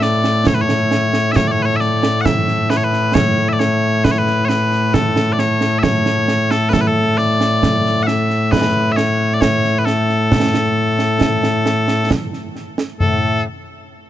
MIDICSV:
0, 0, Header, 1, 3, 480
1, 0, Start_track
1, 0, Key_signature, 3, "major"
1, 0, Tempo, 895522
1, 1210, Time_signature, 3, 2, 24, 8
1, 7557, End_track
2, 0, Start_track
2, 0, Title_t, "Bagpipes"
2, 0, Program_c, 0, 109
2, 0, Note_on_c, 0, 45, 89
2, 0, Note_on_c, 0, 57, 89
2, 14, Note_on_c, 0, 74, 85
2, 252, Note_off_c, 0, 74, 0
2, 252, Note_on_c, 0, 73, 98
2, 292, Note_off_c, 0, 73, 0
2, 292, Note_on_c, 0, 71, 87
2, 328, Note_off_c, 0, 71, 0
2, 328, Note_on_c, 0, 73, 92
2, 706, Note_off_c, 0, 73, 0
2, 706, Note_on_c, 0, 76, 99
2, 729, Note_off_c, 0, 76, 0
2, 729, Note_on_c, 0, 73, 99
2, 792, Note_off_c, 0, 73, 0
2, 792, Note_on_c, 0, 74, 68
2, 811, Note_off_c, 0, 74, 0
2, 811, Note_on_c, 0, 73, 101
2, 870, Note_off_c, 0, 73, 0
2, 870, Note_on_c, 0, 71, 75
2, 886, Note_off_c, 0, 71, 0
2, 886, Note_on_c, 0, 73, 106
2, 945, Note_off_c, 0, 73, 0
2, 945, Note_on_c, 0, 76, 81
2, 967, Note_off_c, 0, 76, 0
2, 967, Note_on_c, 0, 74, 81
2, 1185, Note_off_c, 0, 74, 0
2, 1185, Note_on_c, 0, 78, 96
2, 1207, Note_off_c, 0, 78, 0
2, 1207, Note_on_c, 0, 76, 96
2, 1447, Note_off_c, 0, 76, 0
2, 1447, Note_on_c, 0, 71, 86
2, 1484, Note_off_c, 0, 71, 0
2, 1484, Note_on_c, 0, 73, 77
2, 1522, Note_off_c, 0, 73, 0
2, 1522, Note_on_c, 0, 71, 86
2, 1683, Note_off_c, 0, 71, 0
2, 1683, Note_on_c, 0, 73, 102
2, 1869, Note_off_c, 0, 73, 0
2, 1869, Note_on_c, 0, 76, 73
2, 1892, Note_off_c, 0, 76, 0
2, 1892, Note_on_c, 0, 74, 73
2, 1927, Note_off_c, 0, 74, 0
2, 1927, Note_on_c, 0, 73, 85
2, 2167, Note_off_c, 0, 73, 0
2, 2167, Note_on_c, 0, 71, 95
2, 2205, Note_off_c, 0, 71, 0
2, 2205, Note_on_c, 0, 73, 82
2, 2242, Note_off_c, 0, 73, 0
2, 2242, Note_on_c, 0, 71, 94
2, 2385, Note_off_c, 0, 71, 0
2, 2385, Note_on_c, 0, 73, 84
2, 2405, Note_off_c, 0, 73, 0
2, 2405, Note_on_c, 0, 71, 84
2, 2648, Note_off_c, 0, 71, 0
2, 2648, Note_on_c, 0, 69, 77
2, 2855, Note_off_c, 0, 69, 0
2, 2855, Note_on_c, 0, 74, 82
2, 2891, Note_off_c, 0, 74, 0
2, 2891, Note_on_c, 0, 73, 92
2, 3103, Note_off_c, 0, 73, 0
2, 3103, Note_on_c, 0, 76, 97
2, 3126, Note_off_c, 0, 76, 0
2, 3126, Note_on_c, 0, 73, 97
2, 3490, Note_off_c, 0, 73, 0
2, 3490, Note_on_c, 0, 69, 93
2, 3588, Note_off_c, 0, 69, 0
2, 3588, Note_on_c, 0, 71, 95
2, 3610, Note_off_c, 0, 71, 0
2, 3610, Note_on_c, 0, 69, 95
2, 3650, Note_off_c, 0, 69, 0
2, 3650, Note_on_c, 0, 71, 77
2, 3684, Note_off_c, 0, 71, 0
2, 3684, Note_on_c, 0, 69, 95
2, 3847, Note_off_c, 0, 69, 0
2, 3847, Note_on_c, 0, 74, 93
2, 4303, Note_off_c, 0, 74, 0
2, 4303, Note_on_c, 0, 78, 85
2, 4324, Note_off_c, 0, 78, 0
2, 4324, Note_on_c, 0, 76, 85
2, 4564, Note_off_c, 0, 76, 0
2, 4564, Note_on_c, 0, 71, 98
2, 4781, Note_off_c, 0, 71, 0
2, 4781, Note_on_c, 0, 76, 86
2, 4805, Note_off_c, 0, 76, 0
2, 4805, Note_on_c, 0, 73, 86
2, 5006, Note_off_c, 0, 73, 0
2, 5006, Note_on_c, 0, 74, 71
2, 5043, Note_off_c, 0, 74, 0
2, 5043, Note_on_c, 0, 73, 97
2, 5245, Note_off_c, 0, 73, 0
2, 5245, Note_on_c, 0, 71, 63
2, 5281, Note_off_c, 0, 71, 0
2, 5281, Note_on_c, 0, 69, 81
2, 6486, Note_off_c, 0, 45, 0
2, 6486, Note_off_c, 0, 57, 0
2, 6486, Note_off_c, 0, 69, 0
2, 6969, Note_on_c, 0, 45, 89
2, 6969, Note_on_c, 0, 57, 89
2, 6969, Note_on_c, 0, 69, 87
2, 7193, Note_off_c, 0, 45, 0
2, 7193, Note_off_c, 0, 57, 0
2, 7193, Note_off_c, 0, 69, 0
2, 7557, End_track
3, 0, Start_track
3, 0, Title_t, "Drums"
3, 10, Note_on_c, 9, 38, 67
3, 63, Note_off_c, 9, 38, 0
3, 129, Note_on_c, 9, 38, 73
3, 183, Note_off_c, 9, 38, 0
3, 250, Note_on_c, 9, 35, 69
3, 250, Note_on_c, 9, 38, 118
3, 304, Note_off_c, 9, 35, 0
3, 304, Note_off_c, 9, 38, 0
3, 370, Note_on_c, 9, 38, 74
3, 423, Note_off_c, 9, 38, 0
3, 490, Note_on_c, 9, 38, 83
3, 544, Note_off_c, 9, 38, 0
3, 608, Note_on_c, 9, 38, 78
3, 662, Note_off_c, 9, 38, 0
3, 730, Note_on_c, 9, 35, 66
3, 730, Note_on_c, 9, 38, 104
3, 784, Note_off_c, 9, 35, 0
3, 784, Note_off_c, 9, 38, 0
3, 970, Note_on_c, 9, 38, 31
3, 1024, Note_off_c, 9, 38, 0
3, 1089, Note_on_c, 9, 38, 92
3, 1143, Note_off_c, 9, 38, 0
3, 1209, Note_on_c, 9, 35, 75
3, 1209, Note_on_c, 9, 38, 105
3, 1263, Note_off_c, 9, 35, 0
3, 1263, Note_off_c, 9, 38, 0
3, 1329, Note_on_c, 9, 38, 36
3, 1383, Note_off_c, 9, 38, 0
3, 1448, Note_on_c, 9, 38, 83
3, 1502, Note_off_c, 9, 38, 0
3, 1569, Note_on_c, 9, 38, 34
3, 1623, Note_off_c, 9, 38, 0
3, 1690, Note_on_c, 9, 35, 68
3, 1690, Note_on_c, 9, 38, 125
3, 1743, Note_off_c, 9, 35, 0
3, 1743, Note_off_c, 9, 38, 0
3, 1931, Note_on_c, 9, 38, 77
3, 1984, Note_off_c, 9, 38, 0
3, 2169, Note_on_c, 9, 35, 68
3, 2169, Note_on_c, 9, 38, 109
3, 2223, Note_off_c, 9, 35, 0
3, 2223, Note_off_c, 9, 38, 0
3, 2289, Note_on_c, 9, 38, 27
3, 2342, Note_off_c, 9, 38, 0
3, 2409, Note_on_c, 9, 38, 79
3, 2462, Note_off_c, 9, 38, 0
3, 2528, Note_on_c, 9, 38, 28
3, 2581, Note_off_c, 9, 38, 0
3, 2648, Note_on_c, 9, 35, 66
3, 2648, Note_on_c, 9, 38, 97
3, 2702, Note_off_c, 9, 35, 0
3, 2702, Note_off_c, 9, 38, 0
3, 2767, Note_on_c, 9, 38, 80
3, 2820, Note_off_c, 9, 38, 0
3, 2888, Note_on_c, 9, 38, 70
3, 2941, Note_off_c, 9, 38, 0
3, 3007, Note_on_c, 9, 38, 71
3, 3060, Note_off_c, 9, 38, 0
3, 3128, Note_on_c, 9, 35, 68
3, 3128, Note_on_c, 9, 38, 106
3, 3181, Note_off_c, 9, 35, 0
3, 3181, Note_off_c, 9, 38, 0
3, 3248, Note_on_c, 9, 38, 71
3, 3302, Note_off_c, 9, 38, 0
3, 3367, Note_on_c, 9, 38, 74
3, 3421, Note_off_c, 9, 38, 0
3, 3490, Note_on_c, 9, 38, 78
3, 3543, Note_off_c, 9, 38, 0
3, 3610, Note_on_c, 9, 35, 66
3, 3610, Note_on_c, 9, 38, 99
3, 3663, Note_off_c, 9, 35, 0
3, 3663, Note_off_c, 9, 38, 0
3, 3850, Note_on_c, 9, 38, 30
3, 3903, Note_off_c, 9, 38, 0
3, 3970, Note_on_c, 9, 38, 79
3, 4024, Note_off_c, 9, 38, 0
3, 4090, Note_on_c, 9, 35, 71
3, 4090, Note_on_c, 9, 38, 99
3, 4144, Note_off_c, 9, 35, 0
3, 4144, Note_off_c, 9, 38, 0
3, 4212, Note_on_c, 9, 38, 32
3, 4265, Note_off_c, 9, 38, 0
3, 4330, Note_on_c, 9, 38, 70
3, 4384, Note_off_c, 9, 38, 0
3, 4451, Note_on_c, 9, 38, 28
3, 4504, Note_off_c, 9, 38, 0
3, 4570, Note_on_c, 9, 35, 63
3, 4570, Note_on_c, 9, 38, 112
3, 4624, Note_off_c, 9, 35, 0
3, 4624, Note_off_c, 9, 38, 0
3, 4811, Note_on_c, 9, 38, 76
3, 4865, Note_off_c, 9, 38, 0
3, 5049, Note_on_c, 9, 35, 58
3, 5049, Note_on_c, 9, 38, 112
3, 5102, Note_off_c, 9, 35, 0
3, 5102, Note_off_c, 9, 38, 0
3, 5170, Note_on_c, 9, 38, 27
3, 5224, Note_off_c, 9, 38, 0
3, 5290, Note_on_c, 9, 38, 73
3, 5344, Note_off_c, 9, 38, 0
3, 5411, Note_on_c, 9, 38, 31
3, 5465, Note_off_c, 9, 38, 0
3, 5530, Note_on_c, 9, 35, 68
3, 5530, Note_on_c, 9, 38, 108
3, 5584, Note_off_c, 9, 35, 0
3, 5584, Note_off_c, 9, 38, 0
3, 5651, Note_on_c, 9, 38, 78
3, 5704, Note_off_c, 9, 38, 0
3, 5890, Note_on_c, 9, 38, 67
3, 5944, Note_off_c, 9, 38, 0
3, 6009, Note_on_c, 9, 35, 59
3, 6009, Note_on_c, 9, 38, 114
3, 6063, Note_off_c, 9, 35, 0
3, 6063, Note_off_c, 9, 38, 0
3, 6129, Note_on_c, 9, 38, 76
3, 6182, Note_off_c, 9, 38, 0
3, 6249, Note_on_c, 9, 38, 81
3, 6302, Note_off_c, 9, 38, 0
3, 6368, Note_on_c, 9, 38, 78
3, 6422, Note_off_c, 9, 38, 0
3, 6489, Note_on_c, 9, 35, 60
3, 6489, Note_on_c, 9, 38, 104
3, 6543, Note_off_c, 9, 35, 0
3, 6543, Note_off_c, 9, 38, 0
3, 6611, Note_on_c, 9, 38, 32
3, 6664, Note_off_c, 9, 38, 0
3, 6730, Note_on_c, 9, 38, 30
3, 6784, Note_off_c, 9, 38, 0
3, 6850, Note_on_c, 9, 38, 82
3, 6904, Note_off_c, 9, 38, 0
3, 6970, Note_on_c, 9, 45, 103
3, 7024, Note_off_c, 9, 45, 0
3, 7557, End_track
0, 0, End_of_file